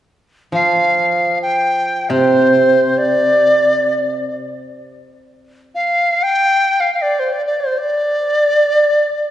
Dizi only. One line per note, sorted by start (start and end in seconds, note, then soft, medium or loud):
0.55 1.39 F5 medium
1.42 2.11 G5 medium
2.10 3.00 C5 medium
2.98 4.37 D5 medium
5.75 6.25 F5 medium
6.23 6.82 G5 medium
6.80 6.93 F5 medium
6.94 7.03 F5 soft
7.02 7.21 D5 medium
7.20 7.34 C5 medium
7.33 7.45 D5 medium
7.46 7.62 D5 medium
7.61 7.80 C5 medium
7.78 9.31 D5 medium